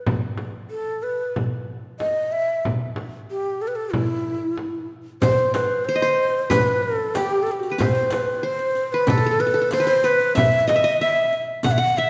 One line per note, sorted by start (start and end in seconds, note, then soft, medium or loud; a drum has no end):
0.06 frame drum medium
0.06 darbuka dum medium
0.38 darbuka tek soft
0.38 frame drum medium
0.70 1.04 A4 medium
1.03 1.35 B4 medium
1.36 frame drum medium
1.36 darbuka dum medium
1.68 darbuka ka soft
1.85 darbuka ka soft
2.00 2.33 D#5 medium
2.00 darbuka tek medium
2.00 frame drum medium
2.32 2.64 E5 medium
2.32 darbuka ka soft
2.65 frame drum medium
2.65 darbuka dum medium
2.82 darbuka ka soft
2.96 darbuka tek medium
2.96 frame drum medium
3.30 3.63 G4 medium
3.30 darbuka ka soft
3.46 darbuka ka soft
3.62 3.69 A4 medium
3.62 darbuka ka soft
3.68 3.77 B4 medium
3.75 3.94 A4 medium
3.92 4.89 E4 medium
3.92 frame drum medium
3.92 darbuka dum medium
4.11 darbuka ka soft
4.28 darbuka ka soft
4.58 darbuka tek medium
4.58 frame drum medium
4.92 darbuka ka soft
5.22 5.52 C5 medium
5.22 5.88 C5 medium
5.22 riq medium
5.22 frame drum medium
5.22 darbuka dum medium
5.38 riq soft
5.54 5.86 B4 medium
5.54 riq medium
5.54 darbuka tek medium
5.54 frame drum medium
5.85 6.52 C5 medium
5.85 6.02 C5 medium
5.85 darbuka ka soft
5.95 6.91 D#5 medium
6.02 6.56 C5 medium
6.02 riq soft
6.50 7.59 B4 medium
6.50 6.84 B4 medium
6.50 riq medium
6.50 darbuka dum medium
6.50 frame drum medium
6.67 riq soft
6.83 7.16 A4 medium
6.83 darbuka ka soft
7.15 7.44 G4 medium
7.15 8.42 G4 medium
7.15 riq medium
7.15 darbuka tek medium
7.15 frame drum medium
7.42 7.53 A4 medium
7.47 riq soft
7.47 darbuka ka soft
7.51 7.61 G4 medium
7.60 7.72 F#4 medium
7.60 riq soft
7.70 7.79 G4 medium
7.70 7.85 B4 medium
7.78 8.43 C5 medium
7.78 8.13 C5 medium
7.78 riq medium
7.78 darbuka dum medium
7.78 frame drum loud
7.95 riq soft
8.10 8.46 B4 medium
8.10 riq medium
8.10 darbuka tek medium
8.10 frame drum medium
8.43 9.00 C5 medium
8.43 8.94 C5 medium
8.43 darbuka ka soft
8.59 riq soft
8.75 riq soft
8.92 9.09 B4 medium
8.92 9.79 B4 medium
9.07 9.42 A4 medium
9.07 9.17 A4 medium
9.07 riq medium
9.07 frame drum medium
9.07 darbuka dum medium
9.18 9.26 A4 medium
9.23 9.31 A4 medium
9.23 riq soft
9.31 9.39 A4 medium
9.40 9.46 A4 medium
9.40 9.72 B4 medium
9.40 darbuka ka soft
9.47 9.54 A4 medium
9.54 9.61 A4 medium
9.61 10.79 A4 medium
9.71 10.06 C5 loud
9.71 9.86 C5 medium
9.71 riq medium
9.71 darbuka tek medium
9.71 frame drum medium
9.80 9.93 B4 medium
9.87 10.10 C5 medium
10.03 11.13 B4 medium
10.03 10.35 B4 medium
10.03 riq soft
10.03 darbuka ka soft
10.20 riq soft
10.35 10.73 E5 medium
10.35 10.69 E5 loud
10.35 riq medium
10.35 darbuka dum medium
10.35 frame drum loud
10.52 riq soft
10.68 10.82 D#5 medium
10.68 11.00 D#5 loud
10.68 riq soft
10.68 darbuka tek medium
10.68 frame drum medium
10.76 10.90 E5 medium
10.84 11.07 D#5 medium
11.01 11.93 E5 medium
11.01 11.36 E5 medium
11.01 darbuka ka soft
11.16 riq soft
11.33 riq soft
11.63 11.77 F#5 medium
11.63 11.73 F#5 loud
11.63 riq medium
11.63 frame drum medium
11.63 darbuka dum loud
11.72 11.80 E5 loud
11.78 12.10 F#5 medium
11.78 11.99 F#5 loud
11.78 riq soft
11.97 12.10 E5 loud
11.97 12.10 E5 medium
11.97 darbuka ka soft